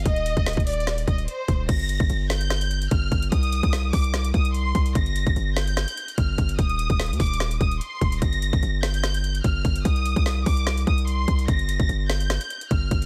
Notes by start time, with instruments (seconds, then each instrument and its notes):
0.05 808-style bass D#1, violin section D#5, kick, closed hi-hat
0.16 closed hi-hat
0.26 closed hi-hat
0.37 808-style bass D#1, kick, closed hi-hat
0.46 snare, closed hi-hat
0.53 kick, closed hi-hat
0.57 808-style bass D#1, closed hi-hat
0.67 violin section D5, closed hi-hat, open hi-hat
0.74 closed hi-hat
0.80 closed hi-hat
0.87 snare, closed hi-hat
0.98 closed hi-hat
1.07 808-style bass D#1, violin section D#5, kick, closed hi-hat
1.18 closed hi-hat
1.28 violin section C5, closed hi-hat
1.48 808-style bass D#1, kick, closed hi-hat
1.69 808-style bass G1, violin section A#6, kick, closed hi-hat, crash
1.80 closed hi-hat
1.89 closed hi-hat
2.00 808-style bass G1, kick, closed hi-hat
2.10 808-style bass G1, closed hi-hat
2.30 violin section G6, snare, closed hi-hat
2.41 closed hi-hat
2.50 snare, closed hi-hat
2.61 closed hi-hat
2.71 closed hi-hat
2.82 closed hi-hat
2.91 808-style bass G1, violin section F6, kick, closed hi-hat
3.12 808-style bass G1, kick, closed hi-hat
3.22 closed hi-hat
3.32 808-style bass C2, violin section D#6, kick, closed hi-hat
3.43 closed hi-hat
3.52 closed hi-hat
3.63 808-style bass C2, kick, closed hi-hat
3.73 snare, closed hi-hat
3.93 808-style bass C2, violin section D6, kick, open hi-hat
4.04 closed hi-hat
4.14 snare, closed hi-hat
4.25 closed hi-hat
4.34 808-style bass C2, violin section D#6, kick, closed hi-hat
4.45 closed hi-hat
4.54 violin section C6, closed hi-hat
4.75 808-style bass C2, kick, closed hi-hat
4.86 closed hi-hat
4.95 808-style bass G1, violin section A#6, kick, closed hi-hat
5.06 closed hi-hat
5.16 closed hi-hat
5.27 808-style bass G1, kick, closed hi-hat
5.36 808-style bass G1, closed hi-hat
5.57 violin section G6, snare, closed hi-hat
5.67 closed hi-hat
5.77 snare, closed hi-hat
5.88 closed hi-hat
5.97 closed hi-hat
6.08 closed hi-hat
6.17 808-style bass G1, violin section F6, kick, closed hi-hat
6.38 808-style bass G1, kick, closed hi-hat
6.49 closed hi-hat
6.58 808-style bass D#1, violin section D#6, kick, closed hi-hat
6.69 closed hi-hat
6.79 closed hi-hat
6.90 808-style bass D#1, kick, closed hi-hat
6.99 snare, closed hi-hat
7.06 closed hi-hat
7.10 808-style bass D#2, closed hi-hat
7.20 808-style bass D#1, violin section D6, kick, closed hi-hat, open hi-hat
7.27 closed hi-hat
7.33 closed hi-hat
7.40 snare, closed hi-hat
7.51 closed hi-hat
7.60 808-style bass D#1, violin section D#6, kick, closed hi-hat
7.71 closed hi-hat
7.81 violin section C6, closed hi-hat
8.01 808-style bass D#1, kick, closed hi-hat
8.12 closed hi-hat
8.22 808-style bass G1, violin section A#6, kick, closed hi-hat
8.33 closed hi-hat
8.42 closed hi-hat
8.53 808-style bass G1, kick, closed hi-hat
8.63 808-style bass G1, closed hi-hat
8.83 violin section G6, snare, closed hi-hat
8.94 closed hi-hat
9.04 snare, closed hi-hat
9.14 closed hi-hat
9.24 closed hi-hat
9.35 closed hi-hat
9.44 808-style bass G1, violin section F6, kick, closed hi-hat
9.65 808-style bass G1, kick, closed hi-hat
9.76 closed hi-hat
9.85 808-style bass C2, violin section D#6, kick, closed hi-hat
9.96 closed hi-hat
10.06 closed hi-hat
10.16 808-style bass C2, kick, closed hi-hat
10.26 snare, closed hi-hat
10.46 808-style bass C2, violin section D6, kick, open hi-hat
10.57 closed hi-hat
10.67 snare, closed hi-hat
10.78 closed hi-hat
10.87 808-style bass C2, violin section D#6, kick, closed hi-hat
10.98 closed hi-hat
11.07 violin section C6, closed hi-hat
11.28 808-style bass C2, kick, closed hi-hat
11.39 closed hi-hat
11.48 808-style bass G1, violin section A#6, kick, closed hi-hat
11.59 closed hi-hat
11.69 closed hi-hat
11.80 808-style bass G1, kick, closed hi-hat
11.89 808-style bass G1, closed hi-hat
12.10 violin section G6, snare, closed hi-hat
12.20 closed hi-hat
12.30 snare, closed hi-hat
12.41 closed hi-hat
12.50 closed hi-hat
12.61 closed hi-hat
12.71 808-style bass G1, violin section F6, kick, closed hi-hat
12.91 808-style bass G1, kick, closed hi-hat
13.02 closed hi-hat